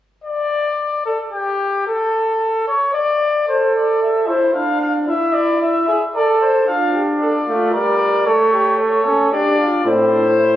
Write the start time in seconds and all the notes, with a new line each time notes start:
0.24 D5
1.05 A4
1.32 G4
1.87 A4
2.68 C#5
2.93 D5
3.47 A4 C5
3.75 D5
4.02 E5
4.27 E4 C5
4.54 D4 F5
4.81 F5
5.07 E4 E5
5.34 D5
5.62 E5
5.88 G#4 E5
6.16 A4 D5
6.41 C5
6.67 D4 F4 F5
6.94 G4
7.21 A4 D5
7.47 A3 F4
7.72 G3 A#4 D5
7.98 A#4
8.26 A3 A4 C#5
8.53 G4
8.78 A4 C#5
9.04 C#4 A4
9.32 D4 G4 D5
9.58 F4
9.85 A2 C4 E4 C5
10.13 D4
10.39 E4